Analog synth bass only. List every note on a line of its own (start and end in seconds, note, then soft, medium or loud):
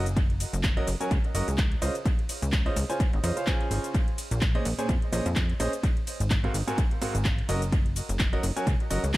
0.00 0.46 F#1 medium
0.53 0.81 F#1 loud
0.87 0.96 F#1 loud
1.11 1.19 C#2 medium
1.35 1.43 F#1 loud
1.48 1.76 C#2 loud
1.82 1.90 C#2 loud
2.42 2.70 C#2 loud
2.76 2.85 C#2 loud
3.13 3.20 G#1 loud
3.24 3.32 F2 loud
3.71 3.79 G#1 medium
4.31 4.59 A#1 loud
4.65 4.74 A#1 loud
4.89 4.97 F2 medium
5.13 5.21 A#1 loud
5.26 5.54 F2 loud
5.60 5.68 A#1 loud
6.20 6.48 G#1 loud
6.54 6.63 G#1 loud
7.15 7.43 G#1 medium
7.49 8.02 F#1 loud
8.09 8.37 F#1 loud
8.43 8.52 F#1 loud
8.67 8.75 C#2 medium
8.90 8.99 F#1 medium
9.04 9.17 C#2 medium